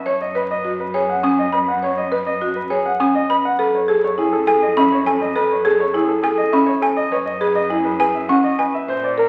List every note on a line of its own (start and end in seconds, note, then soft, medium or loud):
0.00 0.11 E5 medium
0.06 3.43 F#2 medium
0.06 0.25 C#5 medium
0.21 0.40 D#5 medium
0.35 0.55 B4 medium
0.51 0.70 D#5 medium
0.65 0.84 F#4 medium
0.80 0.99 B4 medium
0.94 1.14 G#4 medium
0.94 1.14 C#5 medium
1.09 1.28 F#5 medium
1.23 1.43 C#4 medium
1.23 1.43 G#5 medium
1.23 1.43 D#6 medium
1.39 1.58 D#5 medium
1.52 1.73 B4 medium
1.52 1.72 B5 medium
1.68 1.87 F#5 medium
1.82 2.02 C#5 medium
1.98 2.17 D#5 medium
2.12 2.31 B4 medium
2.27 2.46 D#5 medium
2.41 2.61 F#4 medium
2.56 2.75 B4 medium
2.70 2.90 G#4 medium
2.70 2.90 C#5 medium
2.86 3.05 F#5 medium
3.00 3.20 C#4 medium
3.00 3.19 G#5 medium
3.00 3.20 D#6 medium
3.15 3.34 D#5 medium
3.30 3.49 B4 medium
3.30 3.49 B5 medium
3.45 3.64 F#5 medium
3.59 6.96 F#2 medium
3.59 3.78 A4 medium
3.59 3.78 B4 medium
3.75 3.93 C#5 medium
3.88 4.08 G#4 medium
3.88 4.08 A4 medium
4.04 4.23 C#5 medium
4.18 4.37 E4 medium
4.18 4.37 G#4 medium
4.33 4.52 A4 medium
4.47 4.67 G#4 medium
4.47 4.67 A4 medium
4.47 4.67 G#5 medium
4.62 4.81 D#5 medium
4.77 4.96 C#4 medium
4.77 4.96 E5 medium
4.77 4.96 B5 medium
4.92 5.11 C#5 medium
5.06 5.26 A4 medium
5.06 5.26 G#5 medium
5.21 5.40 D#5 medium
5.36 5.55 A4 medium
5.36 5.55 B4 medium
5.51 5.70 C#5 medium
5.65 5.84 G#4 medium
5.65 5.84 A4 medium
5.80 5.99 C#5 medium
5.94 6.14 E4 medium
5.94 6.13 G#4 medium
6.08 6.28 A4 medium
6.22 6.43 G#4 medium
6.22 6.43 A4 medium
6.22 6.43 G#5 medium
6.38 6.58 D#5 medium
6.52 6.72 C#4 medium
6.52 6.72 E5 medium
6.52 6.73 B5 medium
6.66 6.87 C#5 medium
6.82 7.02 A4 medium
6.82 7.02 G#5 medium
6.97 7.16 D#5 medium
7.12 8.73 F#2 medium
7.12 7.31 B4 medium
7.12 7.31 C#5 medium
7.26 7.46 D#5 medium
7.41 7.61 G#4 medium
7.41 7.61 B4 medium
7.55 7.75 D#5 medium
7.70 7.90 E4 medium
7.70 7.90 G#4 medium
7.84 8.04 B4 medium
8.00 8.20 G#4 medium
8.00 8.19 B4 medium
8.00 8.19 G#5 medium
8.15 8.34 E5 medium
8.29 8.49 C#4 loud
8.29 8.49 F#5 medium
8.29 8.49 C#6 medium
8.44 8.63 D#5 medium
8.59 8.78 B4 medium
8.59 8.78 G#5 medium
8.74 8.93 E5 medium
8.88 9.29 A#2 medium
8.88 9.08 C5 medium
9.04 9.23 D5 medium
9.18 9.29 A#4 medium